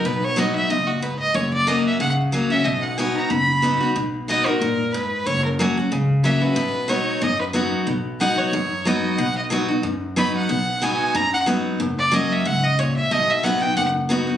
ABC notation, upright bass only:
X:1
M:4/4
L:1/8
Q:"Swing" 1/4=184
K:B
V:1 name="Upright bass" clef=bass
B,,,4 F,,,4 | F,,,4 C,,4 | B,,,4 F,,,4 | B,,,4 F,,4 |
F,,,4 C,,4 | B,,,4 F,,4 | B,,,4 F,,4 | B,,,4 F,,4 |
B,,,4 F,,4 | F,,,4 C,,4 | B,,,4 F,,,4 |]